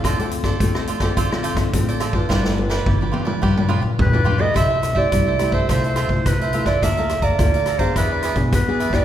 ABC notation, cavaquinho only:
X:1
M:4/4
L:1/16
Q:1/4=106
K:C
V:1 name="Cavaquinho"
[FAcd] [Acd] z [Acd]2 [Acd] [FAcd] [Acd] [FAcd] [Acd] [FAcd] z2 [Acd] [FAcd] [Acd] | [FGBd] [GBd] z [GBd]2 [GBd] [FGBd] [GBd] [FGBd] [GBd] [FGBd] z2 [GBd] [FGBd] [GBd] | [EAce] [Ace] z [Ace]2 [Ace] [EAce] [Ace] [FAce] [Ace] [FAce] z2 [Ace] [FAce] [Ace] | [Adf_b] [dfb] z [dfb]2 [dfb] [Adfb] [dfb] [E^G=Bd] [GBd] [EGBd] z2 [GBd] [EGBd] [GBd] |]